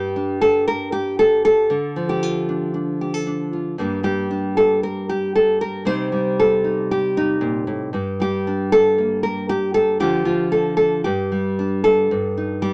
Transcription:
0.00 1.70 G2 medium
0.00 1.67 G3 soft
0.00 0.41 G4 medium
0.16 2.23 D4 soft
0.41 0.67 A4 medium
0.68 0.92 A#4 medium
0.92 1.18 G4 medium
1.19 1.44 A4 medium
1.45 2.09 A4 medium
1.70 3.75 D3 medium
1.96 3.78 F3 medium
2.09 2.74 G4 medium
2.23 3.52 F4 medium
2.49 2.74 D4 soft
2.74 3.25 D4 soft
3.01 3.14 G4 soft
3.14 3.79 A4 soft
3.27 3.75 D4 soft
3.53 3.76 F4 soft
3.78 5.86 G2 medium
3.78 4.03 G3 soft
3.78 5.86 A#3 soft
3.78 4.29 D4 soft
3.78 4.04 G4 soft
4.03 5.85 G3 soft
4.03 4.56 G4 medium
4.31 5.86 D4 soft
4.57 4.83 A4 medium
4.83 5.09 A#4 medium
5.09 5.35 G4 medium
5.35 5.61 A4 medium
5.61 5.86 A#4 medium
5.85 7.93 C3 medium
5.85 6.12 G3 soft
5.85 7.90 C4 soft
5.85 6.63 D#4 soft
5.85 6.38 C5 medium
6.12 7.90 G3 soft
6.40 6.90 A4 medium
6.64 7.16 D#4 soft
6.91 7.68 G4 medium
7.17 7.94 D#4 medium
7.41 7.67 A#2 medium
7.67 7.93 A2 medium
7.93 10.00 G2 medium
7.93 8.19 G4 soft
8.20 9.97 G3 soft
8.20 8.72 G4 medium
8.47 10.00 D4 soft
8.72 9.23 A4 medium
8.98 10.01 A#3 soft
9.23 9.49 A#4 medium
9.49 9.74 G4 medium
9.74 10.00 A4 medium
10.00 11.01 D3 medium
10.00 10.25 F3 soft
10.00 11.02 D4 soft
10.00 10.24 F4 soft
10.00 10.51 G4 medium
10.25 11.05 F3 medium
10.25 11.04 F4 medium
10.52 10.76 A4 medium
10.77 11.04 A4 medium
11.04 12.10 G2 medium
11.04 11.83 G4 medium
11.32 12.07 G3 soft
11.59 12.11 D4 soft
11.84 12.62 A4 medium
12.11 12.73 G2 medium
12.37 12.73 D#4 soft
12.62 12.73 G3 medium
12.62 12.73 G4 medium

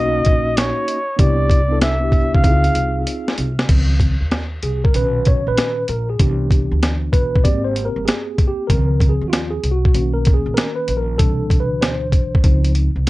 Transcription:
0.00 0.21 B1 loud
0.00 0.97 A#3 medium
0.00 0.98 C#4 medium
0.00 0.98 D#4 medium
0.00 0.99 F#4 medium
0.00 0.59 D#5 loud
0.25 0.70 A#1 medium
0.25 kick medium
0.25 closed hi-hat medium
0.57 1.21 C#5 medium
0.57 snare loud
0.57 closed hi-hat loud
0.88 closed hi-hat medium
1.17 2.30 C2 loud
1.17 1.58 B3 medium
1.17 1.59 D4 medium
1.17 1.59 E4 medium
1.17 1.60 G4 medium
1.17 1.82 D5 medium
1.17 kick loud
1.17 closed hi-hat loud
1.50 kick medium
1.50 closed hi-hat medium
1.69 1.93 B3 medium
1.69 1.94 D4 medium
1.69 1.95 E4 medium
1.69 1.95 A4 medium
1.82 2.36 E5 medium
1.82 snare loud
1.82 closed hi-hat medium
2.00 2.43 B3 medium
2.00 2.44 D4 medium
2.00 2.44 E4 medium
2.04 2.45 G4 medium
2.12 kick medium
2.12 closed hi-hat medium
2.35 2.44 C2 medium
2.35 3.07 F5 medium
2.35 kick medium
2.42 2.71 C#2 medium
2.42 3.47 C4 medium
2.42 3.48 D#4 medium
2.42 2.53 E4 medium
2.42 3.49 G#4 medium
2.42 kick loud
2.42 closed hi-hat medium
2.51 3.52 F4 medium
2.64 closed hi-hat soft
2.75 3.02 C2 medium
2.75 closed hi-hat medium
3.07 closed hi-hat loud
3.28 snare medium
3.38 3.65 C2 medium
3.38 closed hi-hat medium
3.59 snare medium
3.69 4.13 C#2 loud
3.69 4.14 D#3 medium
3.69 4.15 F3 soft
3.69 4.15 C4 medium
3.69 kick loud
3.69 closed hi-hat loud
3.69 crash medium
4.00 kick medium
4.00 closed hi-hat medium
4.21 4.57 D#2 medium
4.31 snare loud
4.31 closed hi-hat medium
4.63 4.90 C2 medium
4.63 4.84 G#4 medium
4.63 closed hi-hat medium
4.84 4.94 A#4 medium
4.84 kick medium
4.94 5.39 B1 loud
4.94 5.84 A#2 soft
4.94 5.84 D#3 medium
4.94 5.84 C#4 medium
4.94 5.27 B4 medium
4.94 closed hi-hat medium
5.25 5.48 C#5 loud
5.25 kick medium
5.25 closed hi-hat medium
5.47 5.56 A#1 medium
5.47 5.86 B4 medium
5.57 snare loud
5.57 closed hi-hat medium
5.88 6.15 A#1 medium
5.88 6.08 A#4 medium
5.88 closed hi-hat medium
6.10 6.19 G#4 medium
6.19 6.64 C2 loud
6.19 7.40 E3 medium
6.19 7.41 B3 soft
6.19 7.41 D4 medium
6.19 6.79 G4 medium
6.19 kick loud
6.19 closed hi-hat loud
6.50 kick medium
6.50 closed hi-hat medium
6.71 7.07 D2 medium
6.83 snare medium
6.83 closed hi-hat medium
7.12 7.46 B1 medium
7.12 7.45 B4 medium
7.12 kick medium
7.12 closed hi-hat medium
7.35 kick medium
7.43 7.89 G#1 medium
7.43 8.65 A#3 medium
7.43 8.66 C4 medium
7.43 8.46 G4 medium
7.43 7.65 D5 loud
7.43 kick medium
7.43 closed hi-hat medium
7.64 7.86 C5 medium
7.76 closed hi-hat medium
7.85 8.07 A#4 medium
7.96 8.05 G1 medium
8.06 8.49 G#4 medium
8.06 snare loud
8.06 closed hi-hat medium
8.38 kick medium
8.38 closed hi-hat medium
8.48 8.70 G4 medium
8.67 9.14 C#2 loud
8.67 9.59 D#3 medium
8.67 9.59 F3 medium
8.67 9.59 C4 medium
8.67 9.11 A#4 medium
8.67 kick loud
8.67 closed hi-hat loud
9.00 kick medium
9.00 closed hi-hat medium
9.09 9.26 G#4 medium
9.21 9.57 D#2 medium
9.28 9.52 F4 medium
9.28 9.32 F#4 medium
9.33 snare loud
9.33 closed hi-hat loud
9.51 9.71 G#4 medium
9.64 9.90 C2 medium
9.64 closed hi-hat medium
9.71 10.11 F#4 medium
9.85 kick medium
9.94 10.39 B1 loud
9.94 11.15 D#3 medium
9.94 11.16 A#3 medium
9.94 11.16 C#4 medium
9.94 closed hi-hat medium
10.14 10.34 A#4 medium
10.25 kick loud
10.25 closed hi-hat medium
10.34 10.56 G#4 medium
10.46 10.55 A#1 medium
10.54 10.75 A#4 medium
10.54 snare loud
10.54 closed hi-hat medium
10.75 10.98 B4 medium
10.88 11.20 A#1 medium
10.88 closed hi-hat medium
10.97 11.17 A#4 medium
11.18 11.71 C2 loud
11.18 12.41 B2 medium
11.18 12.40 E3 medium
11.18 12.41 D4 medium
11.18 11.62 A4 medium
11.18 kick loud
11.18 closed hi-hat loud
11.50 kick medium
11.50 closed hi-hat medium
11.60 11.82 B4 medium
11.71 12.13 D2 medium
11.82 12.71 C5 medium
11.82 snare loud
11.82 closed hi-hat medium
12.13 12.39 B1 medium
12.13 kick medium
12.13 closed hi-hat medium
12.35 kick medium
12.44 12.88 C#2 medium
12.44 12.89 F3 medium
12.44 12.90 C4 medium
12.44 12.90 D#4 medium
12.44 kick medium
12.44 closed hi-hat medium
12.65 closed hi-hat medium
12.75 closed hi-hat medium
12.96 13.05 C2 medium

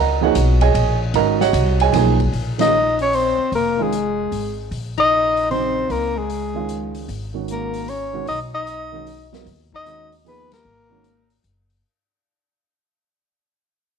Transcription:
0.00 0.34 C#2 medium
0.00 0.22 A#4 medium
0.00 0.22 D#5 medium
0.00 0.22 F#5 medium
0.00 0.22 A#5 medium
0.21 0.34 F3 medium
0.21 0.34 A#3 medium
0.21 0.34 D#4 medium
0.21 0.60 F#4 medium
0.21 0.34 G#4 medium
0.21 0.60 C#5 medium
0.21 0.59 D#5 medium
0.21 0.59 F#5 medium
0.35 0.74 B1 loud
0.35 hi-hat pedal medium
0.35 ride medium
0.61 0.99 G#4 medium
0.61 0.99 C#5 medium
0.61 0.98 D#5 medium
0.61 0.98 G#5 loud
0.61 ride medium
0.74 1.13 A#1 medium
0.74 ride medium
1.14 1.52 G#1 medium
1.14 1.37 D#3 medium
1.14 1.38 G#3 medium
1.14 1.38 C#4 medium
1.14 1.38 F#4 medium
1.14 1.40 A#4 medium
1.14 1.40 D#5 medium
1.14 1.40 F#5 medium
1.14 1.40 A#5 loud
1.14 ride medium
1.41 1.78 F#4 medium
1.41 1.78 C#5 medium
1.41 1.78 D#5 medium
1.41 1.78 F#5 loud
1.41 snare medium
1.53 1.92 C2 loud
1.53 hi-hat pedal medium
1.53 ride medium
1.80 1.93 G#4 medium
1.80 2.18 C#5 medium
1.80 2.18 D#5 medium
1.80 2.18 G#5 loud
1.80 ride medium
1.93 2.32 B1 loud
1.93 2.16 F3 medium
1.93 2.17 A#3 medium
1.93 2.17 D#4 medium
1.93 2.17 G#4 medium
1.93 snare soft
1.93 ride medium
2.20 kick medium
2.20 ride soft
2.32 3.34 A#1 medium
2.32 open hi-hat soft
2.58 2.71 D#3 medium
2.58 2.72 G#3 medium
2.58 2.72 C#4 medium
2.58 2.96 D#4 medium
2.58 2.72 F4 medium
2.58 2.97 D#5 medium
2.58 snare medium
2.58 ride medium
2.99 3.16 C#4 medium
2.99 3.16 C#5 medium
2.99 open hi-hat soft
3.13 3.53 C4 medium
3.13 3.54 C5 medium
3.13 open hi-hat soft
3.38 muted upright bass stroke soft
3.52 4.28 F1 medium
3.52 3.82 A#3 medium
3.52 3.84 A#4 medium
3.52 open hi-hat soft
3.77 3.90 D#3 medium
3.77 3.91 G#3 medium
3.77 4.59 G#3 medium
3.77 3.91 C#4 soft
3.77 3.91 F4 medium
3.83 4.60 G#4 medium
3.93 closed hi-hat soft
4.32 4.69 G#1 medium
4.32 open hi-hat soft
4.71 5.86 A#1 medium
4.71 open hi-hat soft
4.98 5.47 D#4 medium
4.98 5.48 D#5 loud
4.98 kick medium
4.98 ride medium
5.37 open hi-hat soft
5.50 6.11 C#3 medium
5.50 6.11 F#3 soft
5.50 5.91 C4 medium
5.50 6.11 C4 medium
5.50 6.11 D#4 medium
5.50 5.93 C5 medium
5.50 open hi-hat soft
5.90 7.05 C#2 medium
5.90 6.18 A#3 medium
5.90 6.19 A#4 medium
5.90 open hi-hat soft
6.16 6.95 G#3 medium
6.16 6.96 G#4 medium
6.30 open hi-hat soft
6.54 7.06 D#3 medium
6.54 7.06 G#3 soft
6.54 7.06 C#4 soft
6.54 7.06 F4 medium
6.69 closed hi-hat soft
6.95 open hi-hat soft
7.08 8.23 G#1 medium
7.08 open hi-hat soft
7.34 7.85 D#3 medium
7.34 7.85 G#3 medium
7.34 7.85 C#4 medium
7.34 7.86 F#4 medium
7.48 7.91 A#3 medium
7.48 7.91 A#4 medium
7.48 closed hi-hat soft
7.74 open hi-hat soft
7.88 8.28 C#4 medium
7.88 8.28 C#5 medium
7.88 open hi-hat soft
8.13 8.26 D#3 medium
8.13 8.26 G#3 medium
8.13 8.26 C#4 medium
8.13 8.27 F#4 medium
8.27 9.42 B1 medium
8.27 8.40 D#4 medium
8.27 8.40 D#5 medium
8.27 open hi-hat soft
8.54 9.29 D#4 medium
8.54 9.29 D#5 medium
8.67 closed hi-hat soft
8.92 9.05 D#3 medium
8.92 9.05 G#3 medium
8.92 9.06 C#4 medium
8.92 9.06 F#4 medium
9.07 open hi-hat soft
9.32 9.45 F#3 medium
9.32 9.45 B3 medium
9.32 9.45 F4 medium
9.32 9.46 A#4 medium
9.32 snare soft
9.46 10.61 D#2 medium
9.46 open hi-hat soft
9.73 10.10 D#4 medium
9.73 10.11 D#5 loud
9.73 kick soft
9.85 10.08 D#3 medium
9.85 10.09 G#3 medium
9.85 10.09 C#4 medium
9.85 10.09 F#4 medium
9.85 closed hi-hat soft
10.12 open hi-hat soft
10.25 10.48 F3 medium
10.25 10.48 A#3 medium
10.25 10.50 B3 medium
10.25 10.49 D#4 medium
10.25 10.49 G#4 medium
10.25 10.51 B4 medium
10.25 open hi-hat soft
10.52 11.41 A#3 medium
10.52 11.41 A#4 medium
10.52 snare medium
10.52 ride medium
10.65 11.40 G#1 medium
10.90 11.03 D#3 medium
10.90 11.03 G#3 medium
10.90 11.03 C#4 medium
10.90 11.03 F#4 medium
11.04 closed hi-hat soft
11.30 open hi-hat soft
11.44 11.81 F#1 medium
11.44 closed hi-hat soft
11.70 open hi-hat soft

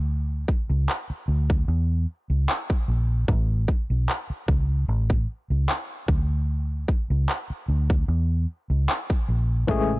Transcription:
0.00 0.44 D2 medium
0.48 kick medium
0.70 0.87 C#2 loud
0.89 clap loud
1.10 muted fingered electric bass stroke soft
1.28 1.65 D2 medium
1.50 kick medium
1.68 2.05 E2 medium
2.30 2.47 C#2 medium
2.49 clap loud
2.70 kick medium
2.88 3.25 A#1 medium
3.28 3.65 A1 loud
3.28 kick medium
3.68 kick medium
3.90 4.07 B1 medium
4.09 clap loud
4.30 muted fingered electric bass stroke soft
4.48 4.85 C#2 medium
4.48 kick loud
4.88 5.25 A1 medium
5.10 kick medium
5.50 5.67 C#2 medium
5.69 clap loud
6.08 6.84 D2 medium
6.08 kick loud
6.88 kick medium
7.10 7.27 C#2 medium
7.29 clap loud
7.50 muted fingered electric bass stroke soft
7.68 8.05 D2 medium
7.90 kick medium
8.08 8.45 E2 medium
8.70 8.87 C#2 medium
8.89 clap loud
9.10 kick medium
9.29 9.65 A#1 medium
9.67 9.99 A1 loud
9.67 9.99 C#3 medium
9.67 9.99 E3 loud
9.67 9.99 G#3 medium
9.67 9.99 A3 medium
9.67 9.99 C#4 loud
9.67 9.99 G#4 medium
9.67 9.99 G#4 loud
9.67 9.99 E5 medium
9.67 kick loud
9.67 closed hi-hat medium

